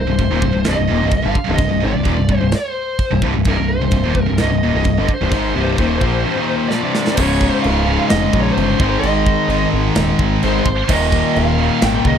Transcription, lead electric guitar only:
0.00 0.64 C5 medium
0.70 1.12 D#5 medium
1.17 1.48 F5 medium
1.55 1.84 D#5 medium
1.85 2.38 D5 medium
2.38 2.55 C5 medium
2.56 3.20 C5 medium
3.49 3.71 A#4 medium
3.68 4.22 C5 loud
4.22 4.41 A#4 loud
4.41 4.73 D#5 loud
4.75 5.07 D#5 loud
5.14 6.68 C5 medium
6.69 7.15 D5 medium
7.15 7.48 C#5 medium
7.48 7.60 C5 medium
7.62 8.07 F5 loud
8.09 8.40 D#5 loud
8.41 8.51 C#5 medium
8.52 8.87 C5 medium
8.88 8.99 C5 medium
8.99 9.67 D#5 medium
10.44 10.92 C5 medium
10.93 11.39 D#5 medium
11.35 11.83 F5 loud
11.85 12.07 G5 medium
12.07 12.18 D#5 loud

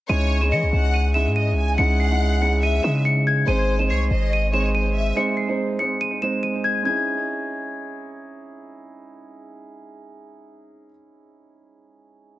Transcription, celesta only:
0.09 0.40 D#7 loud
0.41 0.49 E7 medium
0.52 0.92 C#7 medium
0.94 1.10 D#7 medium
1.14 1.31 E7 medium
1.36 1.76 D#7 medium
1.78 1.95 C#7 loud
2.00 2.39 C7 medium
2.42 2.59 C#7 medium
2.63 2.80 D#7 medium
2.83 3.00 E7 medium
3.05 3.22 C#7 medium
3.27 3.43 G#6 medium
3.48 3.78 D#7 loud
3.79 3.87 E7 medium
3.90 4.30 C7 medium
4.33 4.49 D#7 medium
4.54 4.70 E7 medium
4.75 5.14 D#7 medium
5.17 5.33 C#7 loud
5.37 5.77 C7 medium
5.79 5.96 C#7 medium
6.01 6.18 D#7 medium
6.22 6.39 E7 medium
6.43 6.60 D#7 medium
6.64 6.81 G#6 medium
6.85 8.08 G#6 medium

